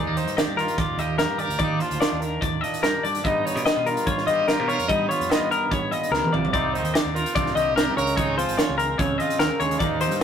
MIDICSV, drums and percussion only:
0, 0, Header, 1, 2, 480
1, 0, Start_track
1, 0, Key_signature, -3, "major"
1, 0, Tempo, 410116
1, 1877, Time_signature, 4, 2, 24, 8
1, 11978, End_track
2, 0, Start_track
2, 0, Title_t, "Drums"
2, 197, Note_on_c, 9, 42, 57
2, 314, Note_off_c, 9, 42, 0
2, 322, Note_on_c, 9, 42, 53
2, 439, Note_off_c, 9, 42, 0
2, 445, Note_on_c, 9, 42, 53
2, 447, Note_on_c, 9, 38, 99
2, 562, Note_off_c, 9, 42, 0
2, 564, Note_off_c, 9, 38, 0
2, 688, Note_on_c, 9, 42, 50
2, 799, Note_off_c, 9, 42, 0
2, 799, Note_on_c, 9, 42, 52
2, 914, Note_on_c, 9, 36, 88
2, 916, Note_off_c, 9, 42, 0
2, 916, Note_on_c, 9, 42, 51
2, 1031, Note_off_c, 9, 36, 0
2, 1033, Note_off_c, 9, 42, 0
2, 1154, Note_on_c, 9, 42, 52
2, 1272, Note_off_c, 9, 42, 0
2, 1391, Note_on_c, 9, 42, 51
2, 1392, Note_on_c, 9, 38, 92
2, 1508, Note_off_c, 9, 42, 0
2, 1509, Note_off_c, 9, 38, 0
2, 1625, Note_on_c, 9, 42, 50
2, 1742, Note_off_c, 9, 42, 0
2, 1760, Note_on_c, 9, 42, 50
2, 1859, Note_off_c, 9, 42, 0
2, 1859, Note_on_c, 9, 42, 45
2, 1868, Note_on_c, 9, 36, 86
2, 1976, Note_off_c, 9, 42, 0
2, 1985, Note_off_c, 9, 36, 0
2, 2110, Note_on_c, 9, 42, 54
2, 2228, Note_off_c, 9, 42, 0
2, 2235, Note_on_c, 9, 42, 47
2, 2352, Note_off_c, 9, 42, 0
2, 2358, Note_on_c, 9, 42, 48
2, 2360, Note_on_c, 9, 38, 95
2, 2476, Note_off_c, 9, 42, 0
2, 2477, Note_off_c, 9, 38, 0
2, 2598, Note_on_c, 9, 42, 48
2, 2715, Note_off_c, 9, 42, 0
2, 2835, Note_on_c, 9, 36, 83
2, 2842, Note_on_c, 9, 42, 50
2, 2952, Note_off_c, 9, 36, 0
2, 2959, Note_off_c, 9, 42, 0
2, 3087, Note_on_c, 9, 42, 49
2, 3204, Note_off_c, 9, 42, 0
2, 3204, Note_on_c, 9, 42, 52
2, 3318, Note_off_c, 9, 42, 0
2, 3318, Note_on_c, 9, 42, 51
2, 3320, Note_on_c, 9, 38, 86
2, 3435, Note_off_c, 9, 42, 0
2, 3437, Note_off_c, 9, 38, 0
2, 3566, Note_on_c, 9, 42, 50
2, 3683, Note_off_c, 9, 42, 0
2, 3684, Note_on_c, 9, 42, 53
2, 3801, Note_off_c, 9, 42, 0
2, 3802, Note_on_c, 9, 36, 89
2, 3806, Note_on_c, 9, 42, 47
2, 3919, Note_off_c, 9, 36, 0
2, 3923, Note_off_c, 9, 42, 0
2, 4058, Note_on_c, 9, 42, 57
2, 4174, Note_off_c, 9, 42, 0
2, 4174, Note_on_c, 9, 42, 56
2, 4287, Note_off_c, 9, 42, 0
2, 4287, Note_on_c, 9, 42, 57
2, 4288, Note_on_c, 9, 38, 91
2, 4404, Note_off_c, 9, 42, 0
2, 4406, Note_off_c, 9, 38, 0
2, 4524, Note_on_c, 9, 42, 50
2, 4641, Note_off_c, 9, 42, 0
2, 4646, Note_on_c, 9, 42, 55
2, 4761, Note_off_c, 9, 42, 0
2, 4761, Note_on_c, 9, 42, 55
2, 4762, Note_on_c, 9, 36, 96
2, 4878, Note_off_c, 9, 42, 0
2, 4880, Note_off_c, 9, 36, 0
2, 4889, Note_on_c, 9, 38, 29
2, 5003, Note_on_c, 9, 42, 53
2, 5006, Note_off_c, 9, 38, 0
2, 5121, Note_off_c, 9, 42, 0
2, 5248, Note_on_c, 9, 42, 54
2, 5249, Note_on_c, 9, 38, 89
2, 5365, Note_off_c, 9, 42, 0
2, 5366, Note_off_c, 9, 38, 0
2, 5493, Note_on_c, 9, 42, 54
2, 5610, Note_off_c, 9, 42, 0
2, 5611, Note_on_c, 9, 42, 54
2, 5728, Note_off_c, 9, 42, 0
2, 5728, Note_on_c, 9, 36, 84
2, 5731, Note_on_c, 9, 42, 52
2, 5845, Note_off_c, 9, 36, 0
2, 5848, Note_off_c, 9, 42, 0
2, 5980, Note_on_c, 9, 42, 60
2, 6097, Note_off_c, 9, 42, 0
2, 6100, Note_on_c, 9, 42, 55
2, 6217, Note_off_c, 9, 42, 0
2, 6220, Note_on_c, 9, 42, 52
2, 6221, Note_on_c, 9, 38, 92
2, 6337, Note_off_c, 9, 42, 0
2, 6339, Note_off_c, 9, 38, 0
2, 6458, Note_on_c, 9, 42, 50
2, 6575, Note_off_c, 9, 42, 0
2, 6690, Note_on_c, 9, 36, 90
2, 6698, Note_on_c, 9, 42, 50
2, 6807, Note_off_c, 9, 36, 0
2, 6815, Note_off_c, 9, 42, 0
2, 6933, Note_on_c, 9, 42, 50
2, 7050, Note_off_c, 9, 42, 0
2, 7062, Note_on_c, 9, 42, 47
2, 7179, Note_off_c, 9, 42, 0
2, 7182, Note_on_c, 9, 38, 48
2, 7299, Note_off_c, 9, 38, 0
2, 7308, Note_on_c, 9, 48, 48
2, 7420, Note_on_c, 9, 45, 65
2, 7425, Note_off_c, 9, 48, 0
2, 7537, Note_off_c, 9, 45, 0
2, 7546, Note_on_c, 9, 43, 70
2, 7651, Note_on_c, 9, 36, 86
2, 7658, Note_on_c, 9, 42, 48
2, 7663, Note_off_c, 9, 43, 0
2, 7768, Note_off_c, 9, 36, 0
2, 7775, Note_off_c, 9, 42, 0
2, 7904, Note_on_c, 9, 42, 57
2, 8014, Note_off_c, 9, 42, 0
2, 8014, Note_on_c, 9, 42, 53
2, 8131, Note_off_c, 9, 42, 0
2, 8137, Note_on_c, 9, 42, 56
2, 8138, Note_on_c, 9, 38, 100
2, 8254, Note_off_c, 9, 42, 0
2, 8255, Note_off_c, 9, 38, 0
2, 8382, Note_on_c, 9, 42, 52
2, 8498, Note_off_c, 9, 42, 0
2, 8498, Note_on_c, 9, 42, 60
2, 8611, Note_on_c, 9, 36, 94
2, 8613, Note_off_c, 9, 42, 0
2, 8613, Note_on_c, 9, 42, 58
2, 8728, Note_off_c, 9, 36, 0
2, 8730, Note_off_c, 9, 42, 0
2, 8734, Note_on_c, 9, 38, 28
2, 8852, Note_off_c, 9, 38, 0
2, 8859, Note_on_c, 9, 42, 56
2, 8976, Note_off_c, 9, 42, 0
2, 9099, Note_on_c, 9, 42, 58
2, 9100, Note_on_c, 9, 38, 88
2, 9216, Note_off_c, 9, 42, 0
2, 9217, Note_off_c, 9, 38, 0
2, 9341, Note_on_c, 9, 42, 54
2, 9447, Note_off_c, 9, 42, 0
2, 9447, Note_on_c, 9, 42, 59
2, 9564, Note_off_c, 9, 42, 0
2, 9569, Note_on_c, 9, 36, 90
2, 9573, Note_on_c, 9, 42, 53
2, 9686, Note_off_c, 9, 36, 0
2, 9690, Note_off_c, 9, 42, 0
2, 9816, Note_on_c, 9, 42, 60
2, 9933, Note_off_c, 9, 42, 0
2, 9933, Note_on_c, 9, 42, 55
2, 10049, Note_off_c, 9, 42, 0
2, 10049, Note_on_c, 9, 42, 54
2, 10050, Note_on_c, 9, 38, 95
2, 10166, Note_off_c, 9, 42, 0
2, 10167, Note_off_c, 9, 38, 0
2, 10292, Note_on_c, 9, 42, 54
2, 10409, Note_off_c, 9, 42, 0
2, 10524, Note_on_c, 9, 36, 96
2, 10524, Note_on_c, 9, 42, 55
2, 10641, Note_off_c, 9, 36, 0
2, 10641, Note_off_c, 9, 42, 0
2, 10766, Note_on_c, 9, 42, 51
2, 10883, Note_off_c, 9, 42, 0
2, 10888, Note_on_c, 9, 42, 55
2, 10998, Note_off_c, 9, 42, 0
2, 10998, Note_on_c, 9, 42, 53
2, 11000, Note_on_c, 9, 38, 100
2, 11115, Note_off_c, 9, 42, 0
2, 11117, Note_off_c, 9, 38, 0
2, 11240, Note_on_c, 9, 42, 50
2, 11357, Note_off_c, 9, 42, 0
2, 11367, Note_on_c, 9, 42, 55
2, 11474, Note_on_c, 9, 36, 88
2, 11475, Note_off_c, 9, 42, 0
2, 11475, Note_on_c, 9, 42, 50
2, 11592, Note_off_c, 9, 36, 0
2, 11592, Note_off_c, 9, 42, 0
2, 11713, Note_on_c, 9, 42, 64
2, 11830, Note_off_c, 9, 42, 0
2, 11837, Note_on_c, 9, 42, 57
2, 11954, Note_off_c, 9, 42, 0
2, 11978, End_track
0, 0, End_of_file